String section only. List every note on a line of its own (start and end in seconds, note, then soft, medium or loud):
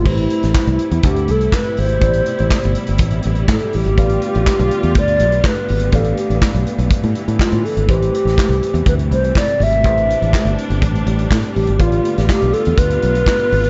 0.05 3.93 C3 medium
0.05 7.84 G3 medium
0.05 2.00 A3 medium
0.05 3.93 E4 medium
2.03 3.96 B2 medium
3.99 7.86 D3 medium
3.99 7.86 B3 medium
3.99 5.92 F4 medium
5.94 9.81 E3 medium
7.88 11.75 C3 medium
7.88 13.70 G3 medium
7.88 11.75 A3 medium
9.84 11.78 D4 medium
11.79 13.70 D3 medium
11.79 13.70 B3 medium
11.79 13.70 F4 medium